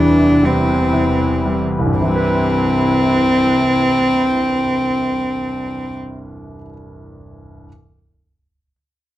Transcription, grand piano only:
0.00 1.93 E1 medium
0.00 1.93 E2 medium
0.00 0.91 E3 medium
0.00 0.41 G3 medium
0.43 1.44 G3 medium
0.93 1.94 E3 soft
1.45 1.96 G3 medium
1.79 6.54 C2 medium
1.86 6.58 G2 medium
1.94 6.61 C3 medium
2.01 6.65 E3 medium
2.08 6.69 G3 soft
2.15 6.72 B4 medium

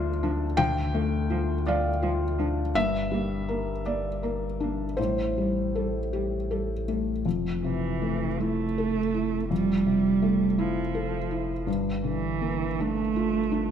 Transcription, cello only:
0.23 0.31 F3 medium
0.57 0.65 F3 medium
0.93 1.01 F3 medium
1.31 1.39 F3 medium
1.67 1.75 F3 medium
2.03 2.11 F3 medium
2.39 2.47 F3 medium
2.76 2.84 A#3 medium
3.13 3.21 A#3 medium
3.49 3.57 A#3 medium
3.86 3.94 A#3 medium
4.23 4.31 A#3 medium
4.63 4.71 A#3 soft
5.02 5.10 G3 medium
5.41 5.49 G3 soft
5.78 5.86 G3 soft
6.15 6.23 G3 medium
6.51 6.59 G3 medium
6.89 6.97 G3 soft
7.64 8.42 E3 medium
8.40 9.50 A3 medium
9.50 10.62 G3 medium
10.60 11.68 F3 medium
12.06 12.83 E3 medium
12.81 13.71 A3 medium

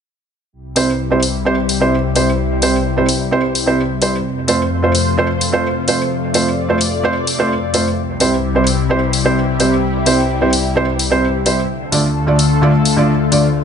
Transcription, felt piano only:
0.76 0.89 C3 medium
0.76 0.89 G3 medium
0.76 0.89 C4 medium
0.76 0.89 E4 medium
0.76 0.89 C5 medium
1.10 1.19 C3 medium
1.10 1.19 G3 medium
1.10 1.19 C4 medium
1.10 1.19 E4 medium
1.10 1.19 C5 medium
1.45 1.54 C3 medium
1.45 1.54 G3 medium
1.45 1.54 C4 medium
1.45 1.54 E4 medium
1.45 1.54 C5 loud
1.80 1.93 C3 medium
1.80 1.94 G3 medium
1.80 1.94 C4 medium
1.80 1.94 E4 medium
1.80 1.94 C5 medium
2.15 2.28 C3 medium
2.15 2.28 G3 medium
2.15 2.29 C4 medium
2.15 2.29 E4 medium
2.15 2.29 C5 medium
2.62 2.75 C3 medium
2.62 2.75 G3 medium
2.62 2.75 C4 medium
2.62 2.75 E4 medium
2.62 2.75 C5 medium
2.96 3.05 C3 medium
2.96 3.05 G3 medium
2.96 3.05 C4 medium
2.96 3.05 E4 medium
2.96 3.05 C5 medium
3.31 3.40 C3 medium
3.31 3.40 G3 medium
3.31 3.40 C4 medium
3.31 3.40 E4 medium
3.31 3.40 C5 loud
3.66 3.79 C3 medium
3.66 3.80 G3 medium
3.66 3.80 C4 medium
3.66 3.80 E4 medium
3.66 3.80 C5 medium
4.01 4.14 G3 medium
4.01 4.15 C4 medium
4.01 4.15 E4 medium
4.01 4.15 C5 medium
4.48 4.61 A3 medium
4.48 4.61 C4 medium
4.48 4.61 F4 medium
4.48 4.61 C5 medium
4.82 4.91 A3 medium
4.82 4.91 C4 medium
4.82 4.91 F4 medium
4.82 4.91 C5 medium
5.17 5.26 A3 medium
5.17 5.26 C4 medium
5.17 5.26 F4 medium
5.17 5.26 C5 loud
5.52 5.66 A3 medium
5.52 5.66 C4 medium
5.52 5.66 F4 medium
5.52 5.66 C5 medium
5.87 6.00 A3 medium
5.87 6.01 C4 medium
5.87 6.01 F4 medium
5.87 6.01 C5 medium
6.34 6.47 A3 medium
6.34 6.47 C4 medium
6.34 6.47 F4 medium
6.34 6.48 C5 medium
6.69 6.77 A3 medium
6.69 6.77 C4 medium
6.69 6.77 F4 medium
6.69 6.78 C5 medium
7.03 7.12 A3 medium
7.03 7.12 C4 medium
7.03 7.12 F4 medium
7.03 7.12 C5 loud
7.38 7.52 A3 medium
7.38 7.52 C4 medium
7.38 7.52 F4 medium
7.38 7.52 C5 medium
7.73 7.87 A3 medium
7.73 7.87 C4 medium
7.73 7.87 F4 medium
7.73 7.87 C5 medium
8.20 8.33 C3 medium
8.20 8.33 G3 medium
8.20 8.33 C4 medium
8.20 8.33 E4 medium
8.20 8.34 C5 medium
8.55 8.63 C3 medium
8.55 8.63 G3 medium
8.55 8.63 C4 medium
8.55 8.63 E4 medium
8.55 8.64 C5 medium
8.89 8.98 C3 medium
8.89 8.98 G3 medium
8.89 8.98 C4 medium
8.89 8.98 E4 medium
8.89 8.98 C5 loud
9.24 9.38 C3 medium
9.24 9.38 G3 medium
9.24 9.38 C4 medium
9.24 9.38 E4 medium
9.24 9.38 C5 loud
9.59 9.72 C3 medium
9.59 9.73 G3 medium
9.59 9.73 C4 medium
9.59 9.73 E4 medium
9.59 9.73 C5 medium
10.06 10.19 C3 medium
10.06 10.19 G3 medium
10.06 10.19 C4 medium
10.06 10.19 E4 medium
10.06 10.20 C5 medium
10.41 10.49 C3 medium
10.41 10.49 G3 medium
10.41 10.49 C4 medium
10.41 10.50 E4 medium
10.41 10.50 C5 medium
10.76 10.84 C3 medium
10.76 10.84 G3 medium
10.76 10.84 C4 medium
10.76 10.84 E4 medium
10.76 10.85 C5 loud
11.10 11.24 C3 medium
11.10 11.24 G3 medium
11.10 11.24 C4 medium
11.10 11.24 E4 medium
11.10 11.24 C5 medium
11.45 11.59 G3 medium
11.45 11.59 C4 medium
11.45 11.59 E4 medium
11.45 11.59 C5 medium
11.92 12.05 D3 medium
11.92 12.05 A3 medium
11.92 12.05 D4 medium
11.92 12.05 F4 medium
11.92 12.06 D5 medium
12.27 12.35 D3 medium
12.27 12.35 A3 medium
12.27 12.35 D4 medium
12.27 12.35 F4 medium
12.27 12.36 D5 medium
12.62 12.70 D3 medium
12.62 12.70 A3 medium
12.62 12.70 D4 medium
12.62 12.70 F4 medium
12.62 12.71 D5 loud
12.96 13.10 D3 medium
12.96 13.10 A3 medium
12.96 13.10 D4 medium
12.96 13.10 F4 medium
12.96 13.10 D5 loud
13.31 13.45 D3 medium
13.31 13.45 A3 medium
13.31 13.45 D4 medium
13.31 13.45 F4 medium
13.31 13.45 D5 medium

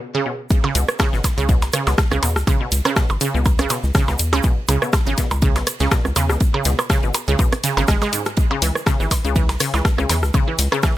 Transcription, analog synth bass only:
0.75 0.85 C#2 loud
1.13 1.21 G#1 loud
1.38 1.64 C#2 loud
1.62 1.70 B1 medium
1.87 1.95 C#2 medium
2.12 2.19 C#2 loud
2.23 2.38 E2 medium
2.36 2.44 C#2 medium
2.72 2.81 C#2 loud
3.10 3.18 G#1 loud
3.34 3.61 C#2 loud
3.59 3.67 B1 medium
3.84 3.91 C#2 loud
4.08 4.16 C#2 loud
4.19 4.34 E2 medium
4.33 4.41 C#2 medium
4.69 4.78 C#2 loud
5.07 5.14 G#1 loud
5.31 5.57 C#2 loud
5.56 5.64 B1 medium
5.80 5.88 C#2 medium
6.05 6.13 C#2 loud
6.16 6.31 E2 medium
6.30 6.37 C#2 medium
6.65 6.75 C#2 loud
7.03 7.11 G#1 loud
7.28 7.36 C#2 loud
7.77 7.85 G#1 loud
7.88 7.98 G#1 loud
8.62 8.71 C#2 loud
9.00 9.08 G#1 loud
9.25 9.51 C#2 medium
9.49 9.57 B1 medium
9.74 9.82 C#2 loud
9.98 10.06 C#2 loud
10.10 10.24 E2 medium
10.23 10.31 C#2 medium
10.59 10.68 C#2 loud

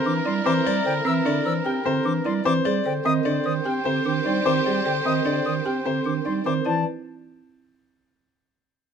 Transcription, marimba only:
0.00 0.12 C4 loud
0.05 0.32 D4 medium
0.25 0.52 E4 medium
0.45 0.72 C4 loud
0.65 0.92 A#4 medium
0.85 1.12 C5 medium
1.05 1.31 C4 loud
1.26 1.52 D4 loud
1.46 1.72 C5 medium
1.66 1.92 G4 medium
1.85 2.12 C4 loud
2.05 2.32 D4 medium
2.25 2.52 E4 medium
2.45 2.72 C4 loud
2.65 2.92 G#4 medium
2.86 3.12 C5 medium
3.06 3.32 C4 loud
3.26 3.52 D4 loud
3.46 3.72 C5 medium
3.65 3.92 G4 medium
3.86 4.12 C4 loud
4.05 4.32 D4 medium
4.26 4.52 D#4 medium
4.46 4.72 C4 loud
4.66 4.92 G#4 medium
4.85 5.12 C5 medium
5.05 5.32 C4 loud
5.25 5.51 D4 loud
5.46 5.72 C5 medium
5.66 5.92 G4 medium
5.86 6.12 C4 loud
6.06 6.32 D4 medium
6.25 6.52 D#4 medium
6.45 6.72 C4 medium
6.66 6.84 E4 medium

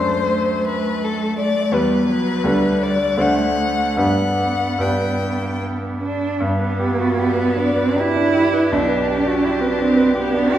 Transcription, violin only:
0.00 0.66 C5 medium
0.67 1.06 B4 medium
1.04 1.39 A4 medium
1.40 1.76 D5 medium
1.74 2.84 B4 medium
2.83 3.22 D5 medium
3.21 4.00 F#5 medium
4.00 4.83 F#5 medium
4.81 5.62 G5 soft
7.20 7.60 B4 soft
7.59 7.99 D5 soft
7.98 8.70 B4 soft
8.71 10.58 G4 soft

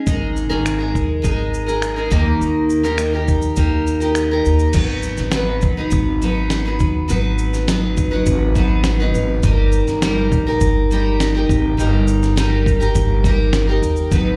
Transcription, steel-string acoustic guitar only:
0.06 0.49 G#3 medium
0.06 0.49 D#4 medium
0.06 0.49 G#4 medium
0.06 0.48 A#4 medium
0.49 0.80 G#2 medium
0.49 0.80 D#3 medium
0.49 0.80 G#3 medium
0.49 0.79 D#4 medium
0.49 0.78 G#4 medium
0.49 0.77 A#4 medium
0.79 1.21 G#3 soft
0.79 1.22 D#4 soft
0.79 1.23 G#4 medium
0.79 1.23 A#4 medium
1.22 1.67 G#3 medium
1.22 1.68 D#4 medium
1.22 1.66 G#4 medium
1.22 1.65 A#4 medium
1.66 1.97 G#3 soft
1.66 1.96 D#4 soft
1.66 1.96 G#4 soft
1.66 1.95 A#4 medium
1.96 2.10 G#3 soft
1.96 2.10 D#4 soft
1.96 2.11 G#4 soft
1.96 2.11 A#4 medium
2.10 2.84 D#3 medium
2.10 2.83 A#3 medium
2.10 2.84 D#4 medium
2.10 2.83 G4 medium
2.10 2.82 A#4 medium
2.83 3.14 D#3 medium
2.83 3.14 A#3 medium
2.83 3.14 D#4 medium
2.83 3.13 G4 medium
2.83 3.12 A#4 medium
3.13 3.56 D#4 soft
3.13 3.56 G4 medium
3.13 3.57 A#4 medium
3.56 4.01 A#3 medium
3.56 4.01 D#4 medium
3.56 4.00 G4 medium
3.56 3.99 A#4 medium
4.00 4.31 D#4 soft
4.00 4.31 G4 soft
4.00 4.30 A#4 medium
4.31 4.74 D#4 soft
4.31 4.75 G4 medium
4.31 4.75 A#4 medium
4.74 5.32 F#3 medium
4.74 5.33 B3 medium
4.74 5.34 D#4 medium
4.74 5.34 B4 medium
5.33 5.77 F#3 medium
5.33 5.77 B3 medium
5.33 5.76 D#4 medium
5.33 5.76 B4 medium
5.77 6.20 F#3 soft
5.77 6.22 B3 soft
5.77 6.21 D#4 soft
5.77 6.21 B4 medium
6.22 6.65 F#3 medium
6.22 6.66 B3 medium
6.22 6.64 D#4 medium
6.22 6.64 B4 medium
6.65 7.07 F#3 soft
6.65 7.08 B3 medium
6.65 7.08 D#4 medium
6.65 7.09 B4 medium
7.08 7.66 F#3 medium
7.08 7.66 B3 medium
7.08 7.68 D#4 medium
7.08 7.68 B4 medium
7.67 8.12 F#3 medium
7.67 8.12 B3 medium
7.67 8.10 D#4 medium
7.67 8.10 B4 medium
8.11 8.54 F#3 medium
8.11 8.55 B3 medium
8.11 8.55 D#4 medium
8.11 8.55 B4 medium
8.56 9.00 F#3 medium
8.56 9.00 B3 medium
8.56 8.99 D#4 medium
8.56 8.98 B4 medium
9.00 9.43 F#3 medium
9.00 9.43 B3 medium
9.00 9.43 D#4 medium
9.00 9.44 B4 medium
9.43 10.01 G3 medium
9.43 10.02 D#4 medium
9.43 10.02 G4 medium
9.43 10.02 A#4 medium
10.02 10.46 G3 medium
10.02 10.46 D#4 medium
10.02 10.46 G4 medium
10.02 10.45 A#4 medium
10.47 10.91 D#4 soft
10.47 10.90 G4 medium
10.47 10.90 A#4 medium
10.91 11.34 G3 medium
10.91 11.35 D#4 medium
10.91 11.35 G4 medium
10.91 11.33 A#4 medium
11.35 11.77 D#4 soft
11.35 11.78 G4 medium
11.35 11.78 A#4 medium
11.77 12.35 G3 medium
11.77 12.36 D#4 medium
11.77 12.36 G4 medium
11.77 12.36 A#4 medium
12.36 12.80 G3 medium
12.36 12.80 D#4 medium
12.36 12.79 G4 medium
12.36 12.79 A#4 medium
12.80 13.24 D#4 soft
12.80 13.24 G4 medium
12.80 13.24 A#4 medium
13.24 13.68 G3 medium
13.24 13.69 D#4 medium
13.24 13.68 G4 medium
13.24 13.66 A#4 medium
13.67 14.11 D#4 soft
13.67 14.12 G4 medium
13.67 14.11 A#4 medium
14.12 14.36 F#3 medium
14.12 14.36 B3 medium
14.12 14.36 D#4 medium
14.12 14.36 B4 medium

